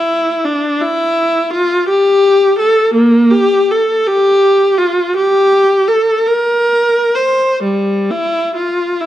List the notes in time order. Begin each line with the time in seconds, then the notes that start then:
Already playing: E4
0.45 D4
0.81 E4
1.50 F4
1.88 G4
2.59 A4
2.94 A#3
3.31 G4
3.71 A4
4.07 G4
4.78 F4
5.16 G4
5.88 A4
6.27 A#4
7.15 C5
7.63 G3
8.11 E4
8.55 F4
9.01 E4